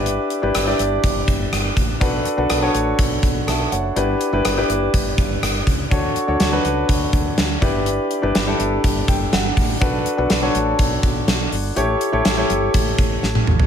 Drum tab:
HH |x-x-x-x-x-x-x-x-|x-x-x-x-x-x-x-x-|x-x-x-x-x-x-x-x-|x-x-x-x-x-x-x-x-|
SD |----r-------r---|----r-------r---|----r-------r---|----o-------o---|
T1 |----------------|----------------|----------------|----------------|
T2 |----------------|----------------|----------------|----------------|
FT |----------------|----------------|----------------|----------------|
BD |--------o-o---o-|o-------o-o-----|--------o-o---o-|o-------o-o---o-|

HH |x-x-x-x-x-x-x-o-|x-x-x-x-x-x-x-o-|x-x-x-x-x-x-----|
SD |----o-------o---|----o-------o---|----o-------o---|
T1 |----------------|----------------|-------------o--|
T2 |----------------|----------------|--------------o-|
FT |----------------|----------------|---------------o|
BD |--------o-o---o-|o-------o-o-----|--------o-o-----|